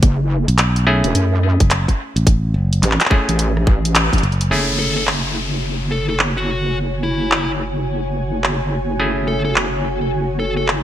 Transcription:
Already playing: A3 C#4 E4 G#4
0.03 F#1, kick, closed hi-hat
0.48 B1, closed hi-hat
0.58 clap, closed hi-hat
0.76 closed hi-hat
0.87 A3 C#4 E4 G#4
1.04 E1, closed hi-hat
1.15 F#2, cross-stick, closed hi-hat
1.60 F#1, kick, closed hi-hat
1.71 clap, closed hi-hat
1.88 kick, closed hi-hat
2.16 A1, closed hi-hat
2.27 kick, closed hi-hat
2.54 F#1
2.73 closed hi-hat
2.83 A1, clap, closed hi-hat
2.92 clap
3.01 clap, closed hi-hat
3.06 clap
3.10 A3 C#4 E4 G#4, kick
3.29 A1, closed hi-hat
3.39 closed hi-hat
3.57 cross-stick
3.67 kick
3.85 closed hi-hat
3.95 clap, closed hi-hat
4.13 A1, kick, closed hi-hat
4.18 closed hi-hat
4.23 F#1, closed hi-hat
4.32 closed hi-hat
4.41 closed hi-hat
4.51 F#1 A3 C#4 E4 F#4 G#4, downlifter
4.79 A4
4.97 A4
5.03 C#5
5.07 clap
5.66 G#5
5.91 A4
6.09 A4
6.19 clap
6.37 F#4
7.03 E4
7.32 clap
8.44 clap
8.99 A3 C#4 E4 G#4
9.28 A4
9.45 A4
9.56 clap
10.40 A4
10.57 A4
10.68 clap

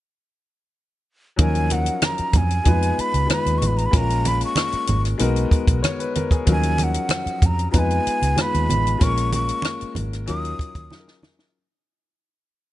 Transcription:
1.36 D#2 F3 F#3 C#4 D#4, kick, closed hi-hat, muted conga
1.41 A#4 G#5
1.55 closed hi-hat
1.70 F#5, closed hi-hat, muted conga
1.86 closed hi-hat
2.02 A#5, cross-stick, closed hi-hat, high conga
2.18 muted fingered electric bass stroke, closed hi-hat
2.33 F2, kick, closed hi-hat, low conga
2.37 G#5
2.50 closed hi-hat
2.64 F2 G#3 B3 D#4 F4 B4, kick, closed hi-hat, muted conga, low conga
2.83 closed hi-hat
2.98 B5, muted fingered electric bass stroke, closed hi-hat
3.14 C#2, closed hi-hat
3.27 G#3 B3 D#4 F4 B4, closed hi-hat, high conga
3.31 B5, cross-stick
3.46 D#2, closed hi-hat
3.58 A1 C#6, high conga
3.62 closed hi-hat
3.67 B5
3.77 A#5, closed hi-hat
3.86 B5
3.91 A#1 G#3 A#3 C#4 F4 A#4, kick, closed hi-hat, muted conga
3.96 A#5
4.10 closed hi-hat
4.25 B5, closed hi-hat, muted conga
4.41 closed hi-hat
4.45 C#6
4.56 cross-stick, closed hi-hat, high conga
4.72 muted fingered electric bass stroke, closed hi-hat
4.87 G#1, closed hi-hat, low conga
5.05 cross-stick, closed hi-hat
5.18 B1 G#3 B3 D#4 F#4 A#4, closed hi-hat, muted conga
5.36 closed hi-hat
5.51 muted fingered electric bass stroke, kick, closed hi-hat
5.67 B1, kick, closed hi-hat
5.83 C#5, cross-stick, closed hi-hat, high conga
5.99 B4, closed hi-hat
6.15 A#4, closed hi-hat, high conga
6.31 G#4, kick, closed hi-hat
6.46 D#2 F3 F#3 C#4 D#4 A#4, kick, closed hi-hat, muted conga
6.52 G#5
6.63 closed hi-hat
6.78 closed hi-hat, muted conga
6.84 F#5
6.94 closed hi-hat
7.09 cross-stick, closed hi-hat, high conga
7.26 muted fingered electric bass stroke, closed hi-hat
7.42 F2 A#5, kick, closed hi-hat, low conga
7.59 closed hi-hat
7.71 F2 G#3 B3 D#4 F4 B4 A#5, kick, closed hi-hat, low conga
7.79 G#5
7.91 closed hi-hat
8.07 muted fingered electric bass stroke, closed hi-hat
8.22 C#2, closed hi-hat
8.36 G#3 B3 D#4 F4 B4, cross-stick, closed hi-hat, high conga
8.41 B5
8.54 D#2, closed hi-hat
8.70 A1, closed hi-hat, high conga
8.87 closed hi-hat
8.98 A#1 G#3 A#3 C#4 F4 A#4, kick, closed hi-hat, muted conga
9.03 C#6
9.17 closed hi-hat
9.32 C#6, closed hi-hat, muted conga
9.49 closed hi-hat
9.62 cross-stick, closed hi-hat, high conga
9.81 muted fingered electric bass stroke, closed hi-hat
9.95 G#1, closed hi-hat, low conga
10.13 cross-stick, closed hi-hat
10.26 D#2 F#3 C#4 D#4 F4 A#4 D#6, closed hi-hat
10.45 closed hi-hat
10.59 muted fingered electric bass stroke, kick, closed hi-hat
10.75 D#2, kick, closed hi-hat
10.90 F#3 C#4 D#4 F4 G#4, snare, high conga
11.00 A#4
11.08 snare
11.23 snare, high conga
11.39 snare

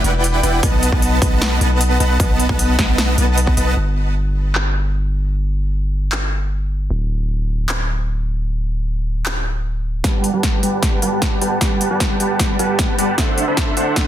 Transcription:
0.04 E1 E4 B4 D5 F#5 G5, closed hi-hat
0.24 closed hi-hat
0.43 E1 E4 B4 D5 F#5 G5, closed hi-hat
0.63 B1 B3 B4 A5, kick, closed hi-hat
0.83 closed hi-hat
0.92 B1 B3 B4 D#5 A5, kick
1.02 closed hi-hat
1.22 B1 B3 B4 D#5 F#5, kick, closed hi-hat
1.42 snare, closed hi-hat
1.61 B1 B3 B4 D#5 F#5 A5, closed hi-hat
1.81 closed hi-hat
2.00 B1 B3 B4 D#5 F#5 A5, closed hi-hat
2.20 B1 B3 B4 D#5, kick, closed hi-hat
2.40 closed hi-hat
2.49 B1 B3 B4 F#5 A5, kick
2.59 closed hi-hat
2.79 B1 B3 B4 D#5 F#5, kick, snare, closed hi-hat
2.98 snare, closed hi-hat
3.18 B1 B3 B4 D#5 F#5 A5, closed hi-hat
3.38 closed hi-hat
3.47 kick
3.57 B1 B3 B4 D#5 F#5 A5, closed hi-hat
3.77 G1
4.55 clap
6.12 clap
6.90 D1
7.69 clap
9.26 clap
10.04 G1 G3 G4 B4 F#5 A5, kick, snare, closed hi-hat
10.24 closed hi-hat
10.33 G1 G3 G4 B4 F#5 A5
10.43 kick, snare, closed hi-hat
10.63 G1 G3 G4 B4 F#5 A5, closed hi-hat
10.83 kick, snare, closed hi-hat
11.02 G1 G3 G4 B4 F#5 A5, closed hi-hat
11.22 kick, snare, closed hi-hat
11.41 G1 G3 G4 B4 F#5 A5, closed hi-hat
11.61 G1 G3 G4 B4 F#5, kick, snare, closed hi-hat
11.81 closed hi-hat
11.90 G1 G3 G4 B4 F#5 A5
12.00 kick, snare, closed hi-hat
12.20 G1 G3 G4 B4 F#5 A5, closed hi-hat
12.40 kick, snare, closed hi-hat
12.59 G1 G3 G4 B4 F#5 A5, closed hi-hat
12.79 kick, snare, closed hi-hat
12.98 G1 G3 G4 B4 F#5 A5, closed hi-hat
13.18 D1 D4 A4 E5, kick, snare, closed hi-hat
13.38 closed hi-hat
13.47 D1 D4 A4 C5 E5 B5
13.57 kick, snare, closed hi-hat
13.77 D1 D4 A4 C5 E5 F#5, closed hi-hat
13.96 kick, snare, closed hi-hat

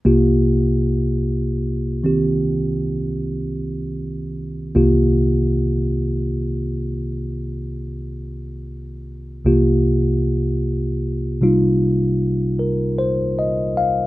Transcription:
0.05 C2 C3 A#3 F4 G4
2.04 D#3 C4 G4
4.75 C2 C3 A#3 F4 G4
9.45 C2 C3 A#3 F4 G4
11.41 C3 G3 D#4 F4
12.59 A#4
12.98 C5
13.39 D#5
13.77 F5

